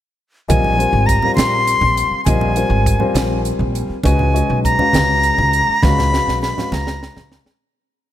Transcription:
0.48 0.85 A#1 medium
0.48 0.75 G3 medium
0.48 0.76 C4 medium
0.48 0.76 F4 medium
0.48 0.76 A#4 medium
0.48 0.76 D#5 medium
0.48 1.08 G#5 medium
0.48 kick loud
0.48 closed hi-hat medium
0.48 high conga medium
0.64 low conga medium
0.77 1.18 G3 medium
0.77 1.19 C4 medium
0.77 1.19 F4 medium
0.77 1.19 A#4 medium
0.77 1.19 C5 medium
0.77 closed hi-hat medium
0.93 1.16 G#1 medium
0.93 low conga soft
1.06 1.34 A#5 medium
1.06 kick medium
1.06 closed hi-hat medium
1.22 2.17 G3 medium
1.22 2.17 C4 medium
1.22 2.17 F4 medium
1.22 2.17 A#4 medium
1.22 2.18 F5 medium
1.22 low conga medium
1.35 1.73 A#1 medium
1.35 2.21 C6 loud
1.35 closed hi-hat medium
1.35 high conga medium
1.39 snare loud
1.67 closed hi-hat medium
1.81 2.05 A#1 medium
1.81 low conga medium
1.97 closed hi-hat medium
2.11 muted upright bass stroke soft
2.25 2.62 A#1 loud
2.25 2.54 G3 medium
2.25 2.54 C4 medium
2.25 2.54 F4 medium
2.25 2.54 A#4 medium
2.25 2.54 D#5 medium
2.25 3.41 G#5 medium
2.25 kick loud
2.25 closed hi-hat medium
2.25 high conga medium
2.41 low conga medium
2.56 2.97 G3 medium
2.56 2.97 C4 medium
2.56 2.96 F4 medium
2.56 2.97 A#4 medium
2.56 2.97 C5 medium
2.56 closed hi-hat medium
2.70 2.94 G#1 medium
2.70 low conga soft
2.86 kick medium
2.86 closed hi-hat medium
3.00 3.94 G3 medium
3.00 3.94 C4 medium
3.00 3.94 F4 medium
3.00 3.94 A#4 medium
3.00 3.94 C5 medium
3.00 low conga medium
3.14 3.50 A#1 medium
3.14 snare loud
3.14 closed hi-hat medium
3.14 high conga medium
3.45 closed hi-hat medium
3.59 3.83 A#1 medium
3.59 low conga medium
3.75 closed hi-hat medium
3.89 muted upright bass stroke soft
4.03 4.40 C#2 loud
4.03 4.31 G#3 medium
4.03 4.32 C#4 medium
4.03 4.32 F#4 medium
4.03 4.32 B4 medium
4.03 4.32 D#5 medium
4.03 4.60 G#5 medium
4.03 kick loud
4.03 closed hi-hat medium
4.03 high conga medium
4.19 low conga medium
4.34 4.75 G#3 medium
4.34 4.74 C#4 medium
4.34 4.74 F#4 medium
4.34 4.75 B4 medium
4.34 4.75 D#5 medium
4.34 closed hi-hat medium
4.49 4.73 B1 medium
4.49 low conga soft
4.64 5.84 A#5 loud
4.64 kick medium
4.64 closed hi-hat medium
4.79 5.73 G#3 medium
4.79 5.73 C#4 medium
4.79 5.73 F#4 medium
4.79 5.73 B4 medium
4.79 5.73 F5 medium
4.79 low conga medium
4.93 5.29 C#2 medium
4.93 snare medium
4.93 closed hi-hat medium
4.93 high conga medium
5.23 closed hi-hat medium
5.38 5.62 C#2 medium
5.38 low conga medium
5.53 closed hi-hat medium
5.68 muted upright bass stroke soft
5.82 6.18 C#2 loud
5.82 6.10 G#3 medium
5.82 6.10 C#4 medium
5.82 6.10 F#4 medium
5.82 6.10 B4 medium
5.82 6.10 F5 medium
5.82 6.41 B5 loud
5.82 kick loud
5.82 snare medium
5.82 high conga medium
5.98 snare medium
5.98 low conga medium
6.12 6.52 G#3 medium
6.12 6.53 C#4 medium
6.12 6.53 F#4 medium
6.12 6.53 B4 medium
6.12 6.53 F5 medium
6.12 snare medium
6.27 6.51 B1 medium
6.27 snare medium
6.42 6.75 B5 medium
6.42 snare medium
6.57 7.50 G#3 medium
6.57 7.50 C#4 medium
6.57 7.51 F#4 medium
6.57 7.51 B4 medium
6.57 7.51 F5 medium
6.57 snare medium
6.57 low conga medium
6.72 7.07 C#2 medium
6.72 7.39 A#5 medium
6.72 snare medium
6.72 high conga medium
6.72 low conga soft
6.87 snare medium
6.87 low conga soft
7.03 snare medium
7.16 7.39 C#2 medium
7.16 snare medium
7.16 low conga medium
7.32 snare medium
7.46 muted upright bass stroke soft
7.46 snare medium

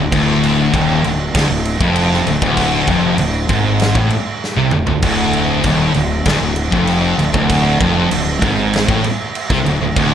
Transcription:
0.00 0.11 D1 medium
0.00 0.12 D2 medium
0.12 0.69 D1 medium
0.12 0.73 D2 loud
0.12 kick loud
0.12 crash medium
0.44 crash medium
0.73 1.02 D#1 medium
0.73 1.03 D#2 loud
0.73 kick loud
0.73 crash medium
1.04 1.33 D1 medium
1.04 1.29 D2 medium
1.04 crash medium
1.35 1.49 D1 loud
1.35 1.48 D2 loud
1.35 kick loud
1.35 snare loud
1.35 crash medium
1.50 1.78 D1 medium
1.50 1.74 D2 medium
1.65 crash medium
1.80 2.23 F1 medium
1.80 2.26 F2 loud
1.80 kick loud
1.96 crash medium
2.14 snare soft
2.25 2.40 D1 medium
2.25 2.40 D2 medium
2.25 crash medium
2.42 2.85 D1 loud
2.42 2.87 D2 medium
2.42 kick loud
2.57 kick medium
2.57 crash medium
2.87 3.16 F1 medium
2.87 3.18 F2 loud
2.87 kick loud
2.87 crash medium
3.18 3.47 D1 medium
3.18 3.44 D2 medium
3.18 crash medium
3.49 3.92 G#1 medium
3.49 3.95 G#2 loud
3.49 kick loud
3.49 crash medium
3.80 snare loud
3.80 crash medium
3.95 4.10 A1 loud
3.95 4.10 A2 loud
3.95 kick loud
4.10 crash medium
4.44 snare medium
4.56 4.71 C2 loud
4.56 4.71 C3 loud
4.71 4.86 D1 medium
4.71 4.86 D2 medium
4.71 mid tom medium
4.86 5.02 D1 medium
4.86 5.01 D2 medium
4.86 floor tom loud
5.02 5.61 D1 loud
5.02 5.64 D2 loud
5.02 kick loud
5.02 crash loud
5.33 crash medium
5.64 5.93 D#1 medium
5.64 5.94 D#2 loud
5.64 kick medium
5.64 crash medium
5.94 6.24 D1 medium
5.94 6.20 D2 medium
5.94 crash medium
6.25 6.40 D1 medium
6.25 6.40 D2 loud
6.25 kick loud
6.25 snare loud
6.25 crash medium
6.41 6.70 D1 medium
6.41 6.66 D2 medium
6.56 crash medium
6.71 7.16 F1 medium
6.71 7.17 F2 loud
6.71 kick loud
6.87 crash medium
7.18 7.33 D1 medium
7.18 7.31 D2 medium
7.18 crash medium
7.33 7.78 D1 loud
7.33 7.79 D2 medium
7.33 kick loud
7.50 kick loud
7.50 crash medium
7.80 8.10 F1 medium
7.80 8.10 F2 loud
7.80 kick loud
7.80 crash medium
8.11 8.40 D1 medium
8.11 8.36 D2 medium
8.11 crash medium
8.41 8.85 G#1 medium
8.41 8.87 G#2 loud
8.41 kick loud
8.41 crash medium
8.73 snare loud
8.73 crash medium
8.88 9.03 A1 loud
8.88 9.03 A2 medium
8.88 kick loud
9.04 crash medium
9.35 crash medium
9.50 9.64 C2 loud
9.50 9.65 C3 loud
9.50 kick loud
9.50 snare soft
9.65 9.80 D1 medium
9.65 9.80 D2 medium
9.65 crash medium
9.81 9.96 D1 medium
9.81 9.95 D2 medium
9.96 10.14 D1 medium
9.96 10.14 D2 loud
9.96 kick loud
9.96 crash medium

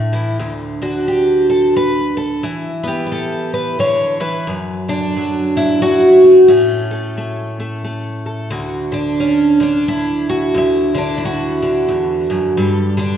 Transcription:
0.00 0.40 A2 medium
0.13 0.37 E3 medium
0.39 2.43 D2 medium
0.82 2.44 D3 medium
0.82 1.76 F#4 medium
1.08 1.49 G4 medium
1.50 1.76 A4 medium
1.76 2.17 B4 medium
2.17 2.44 A4 medium
2.43 4.19 E3 medium
2.83 3.78 B3 medium
2.83 3.75 G4 medium
3.07 3.11 B4 medium
3.12 3.53 A4 medium
3.54 3.80 B4 medium
3.79 4.20 D3 medium
3.79 4.20 C#5 medium
4.20 4.47 E3 medium
4.20 4.47 B4 medium
4.47 6.47 F#2 medium
4.88 6.50 D3 medium
4.88 5.82 D4 medium
5.17 6.51 F#3 soft
5.57 6.24 E4 medium
5.82 6.50 F#4 loud
6.24 6.49 A3 soft
6.48 8.52 A2 medium
6.48 8.53 C#4 medium
6.91 7.16 A3 medium
7.17 7.59 A3 soft
7.60 7.83 A3 soft
7.84 8.49 A3 soft
8.26 8.49 A4 soft
8.50 10.53 D2 medium
8.50 8.93 F#4 soft
8.92 9.60 D3 medium
8.92 9.61 D4 medium
9.20 9.88 C#4 medium
9.60 10.93 D3 medium
9.60 10.29 D4 medium
9.88 10.55 E4 medium
10.29 10.55 F#4 medium
10.54 11.88 D2 medium
10.54 11.17 E4 medium
10.94 11.61 D3 medium
10.94 11.23 D4 medium
11.18 11.90 E4 medium
11.25 12.58 F#4 medium
11.62 12.96 D3 medium
11.88 12.29 E2 medium
12.30 12.57 F#2 medium
12.57 13.17 G2 medium
12.57 12.99 A4 soft
12.97 13.17 D3 medium
12.97 13.17 D4 medium

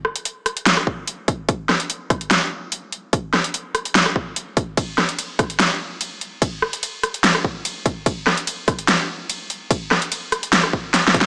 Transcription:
0.05 cross-stick medium
0.16 closed hi-hat medium
0.25 closed hi-hat medium
0.46 cross-stick medium
0.46 closed hi-hat medium
0.57 closed hi-hat medium
0.66 snare loud
0.66 closed hi-hat medium
0.77 cross-stick medium
0.87 kick medium
1.07 closed hi-hat medium
1.28 kick loud
1.28 closed hi-hat medium
1.49 kick loud
1.49 closed hi-hat medium
1.69 cross-stick medium
1.69 snare medium
1.80 closed hi-hat medium
1.90 closed hi-hat medium
2.10 kick loud
2.10 cross-stick medium
2.10 closed hi-hat medium
2.21 closed hi-hat medium
2.31 snare loud
2.31 closed hi-hat medium
2.72 closed hi-hat medium
2.92 closed hi-hat medium
3.13 kick loud
3.13 closed hi-hat medium
3.34 cross-stick medium
3.34 snare medium
3.44 closed hi-hat medium
3.54 closed hi-hat medium
3.75 cross-stick medium
3.75 closed hi-hat medium
3.85 closed hi-hat medium
3.95 snare loud
3.95 closed hi-hat medium
4.06 cross-stick medium
4.16 kick medium
4.36 closed hi-hat medium
4.57 kick loud
4.57 closed hi-hat medium
4.77 kick loud
4.77 closed hi-hat medium
4.77 ride medium
4.98 cross-stick medium
4.98 snare medium
5.09 closed hi-hat medium
5.19 closed hi-hat medium
5.19 ride soft
5.39 kick loud
5.39 cross-stick medium
5.39 closed hi-hat medium
5.50 closed hi-hat medium
5.60 snare loud
5.60 closed hi-hat medium
5.60 ride medium
6.01 closed hi-hat medium
6.01 ride soft
6.21 closed hi-hat soft
6.42 kick loud
6.42 closed hi-hat medium
6.42 ride medium
6.62 cross-stick medium
6.73 closed hi-hat medium
6.83 closed hi-hat medium
6.83 ride soft
7.03 cross-stick medium
7.03 closed hi-hat medium
7.14 closed hi-hat medium
7.24 snare loud
7.24 closed hi-hat medium
7.24 ride medium
7.35 cross-stick medium
7.45 kick medium
7.65 closed hi-hat medium
7.65 ride soft
7.86 kick loud
7.86 closed hi-hat medium
8.06 kick loud
8.06 closed hi-hat medium
8.06 ride medium
8.27 cross-stick medium
8.27 snare medium
8.37 closed hi-hat medium
8.47 closed hi-hat medium
8.47 ride soft
8.68 kick loud
8.68 cross-stick medium
8.68 closed hi-hat medium
8.79 closed hi-hat medium
8.88 snare loud
8.88 closed hi-hat medium
8.88 ride medium
9.30 closed hi-hat medium
9.30 ride medium
9.50 closed hi-hat medium
9.71 kick loud
9.71 closed hi-hat medium
9.71 ride medium
9.91 cross-stick medium
9.91 snare medium
10.02 closed hi-hat medium
10.12 closed hi-hat medium
10.12 ride soft
10.32 cross-stick medium
10.32 closed hi-hat medium
10.43 closed hi-hat medium
10.53 snare loud
10.53 closed hi-hat medium
10.53 ride medium
10.64 cross-stick medium
10.73 kick medium
10.94 snare medium
10.94 closed hi-hat medium
10.94 ride soft
11.08 snare medium
11.14 kick loud
11.14 closed hi-hat medium
11.21 snare loud

